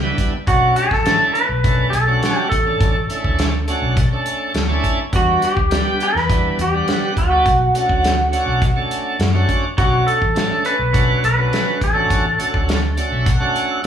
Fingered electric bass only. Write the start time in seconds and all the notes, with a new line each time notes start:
Already playing: C#2
0.47 B1
0.91 A1
1.49 B1
1.92 B1
2.52 A1
2.81 A1
3.11 muted fingered electric bass stroke
3.25 D2
3.82 B1
4.55 D2
5.12 E2
5.57 D2
6.15 E2
6.58 E2
7.17 D2
7.45 B1
7.74 muted fingered electric bass stroke
7.89 D2
8.46 B1
9.19 F#2
9.78 B1
10.21 A1
10.79 B1
11.23 B1
11.81 A1
12.10 A1
12.40 muted fingered electric bass stroke
12.54 D2
13.12 B1